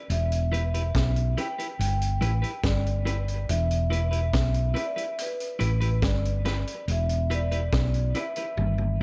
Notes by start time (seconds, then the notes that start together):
Already playing: D5
0.10 E1 E5, closed hi-hat
0.32 closed hi-hat
0.52 E4 G4 B4, closed hi-hat
0.74 E4 G4 B4, closed hi-hat
0.95 B1, kick, snare, closed hi-hat
1.16 closed hi-hat
1.37 E4 G4 B4 G5, closed hi-hat
1.58 E4 G4 B4, closed hi-hat
1.79 G1 G5, closed hi-hat
2.02 closed hi-hat
2.21 A1 E4 G4 B4, closed hi-hat
2.42 E4 G4 B4, closed hi-hat
2.64 G1 D5, kick, snare, closed hi-hat
2.86 closed hi-hat
3.05 E4 G4 B4, closed hi-hat
3.28 closed hi-hat
3.49 E1 E5, closed hi-hat
3.71 closed hi-hat
3.90 E4 G4 B4, closed hi-hat
4.11 E4 G4 B4, closed hi-hat
4.33 B1, kick, snare, closed hi-hat
4.54 closed hi-hat
4.74 E4 G4 B4 E5, closed hi-hat
4.85 D5
4.92 E5
4.96 E4 G4 B4, closed hi-hat
5.18 B4, closed hi-hat
5.40 closed hi-hat
5.59 A1 E4 G4 B4, closed hi-hat
5.81 E4 G4 B4, closed hi-hat
6.02 G1 D5, kick, snare, closed hi-hat
6.25 closed hi-hat
6.45 E4 G4 B4, snare, closed hi-hat
6.67 closed hi-hat
6.88 E1 E5, closed hi-hat
7.09 closed hi-hat
7.30 E4 G4 B4 D5, closed hi-hat
7.39 E5
7.48 E4 G4 B4 D5, closed hi-hat
7.73 B1, kick, snare, closed hi-hat
7.94 closed hi-hat
8.15 E4 G4 B4 E5, closed hi-hat
8.36 E4 G4 B4, closed hi-hat
8.57 G1, high tom
8.78 high tom